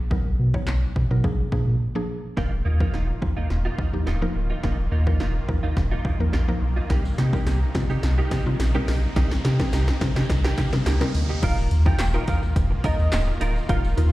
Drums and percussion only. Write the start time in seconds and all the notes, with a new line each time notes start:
0.11 kick
0.54 kick
0.67 snare, clap
0.96 kick
1.24 kick
1.52 kick
2.37 kick, snare
2.80 kick
2.94 snare
3.22 kick
3.50 snare
3.78 kick
4.07 snare
4.64 kick, snare
5.07 kick
5.20 snare
5.49 kick
5.77 kick, snare
6.05 kick
6.33 snare
6.90 kick, snare, closed hi-hat
7.05 tambourine
7.18 snare, closed hi-hat, tambourine
7.33 kick, tambourine
7.47 snare, closed hi-hat, tambourine
7.75 kick, snare, closed hi-hat, tambourine
7.90 tambourine
8.03 snare, closed hi-hat, tambourine
8.31 kick, snare, closed hi-hat, tambourine
8.60 snare, closed hi-hat, tambourine
8.88 snare, open hi-hat, tambourine
9.03 tambourine
9.16 kick, snare, closed hi-hat
9.31 snare, tambourine
9.45 snare, closed hi-hat, tambourine
9.60 kick, snare, tambourine
9.73 snare, closed hi-hat, tambourine
9.88 snare
10.01 kick, snare, closed hi-hat, tambourine
10.16 snare, tambourine
10.29 kick, snare, closed hi-hat, tambourine
10.45 snare
10.58 kick, snare, closed hi-hat, tambourine
10.73 snare, tambourine
10.86 snare, closed hi-hat, tambourine
11.01 snare
11.14 open hi-hat, tambourine
11.43 kick, closed hi-hat, crash
11.58 tambourine
11.71 closed hi-hat, tambourine
11.86 kick, tambourine
11.99 snare, clap, closed hi-hat, tambourine
12.28 kick, closed hi-hat, tambourine
12.43 tambourine
12.56 kick, closed hi-hat, tambourine
12.84 kick, closed hi-hat, tambourine
12.99 tambourine
13.12 snare, clap, closed hi-hat, tambourine
13.41 closed hi-hat, tambourine
13.56 tambourine
13.69 kick, closed hi-hat
13.84 tambourine
13.98 closed hi-hat, tambourine